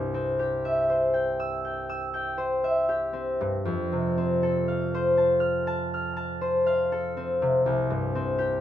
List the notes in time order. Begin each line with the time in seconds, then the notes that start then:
Already playing: C2 G2 G4 G5
0.14 C4
0.39 G4
0.65 E5
0.89 C5
1.14 G5
1.40 E6
1.65 G5
1.89 E6
2.14 G5
2.38 C5
2.64 E5
2.89 G4
3.13 C4
3.41 G2
3.65 F2
3.92 C3
4.17 C4
4.43 A4
4.68 F5
4.94 C5
5.17 A5
5.40 F6
5.67 A5
5.94 F6
6.17 A5
6.41 C5
6.66 F5
6.92 A4
7.17 C4
7.42 C3
7.66 C2
7.90 G2
8.15 C4
8.38 G4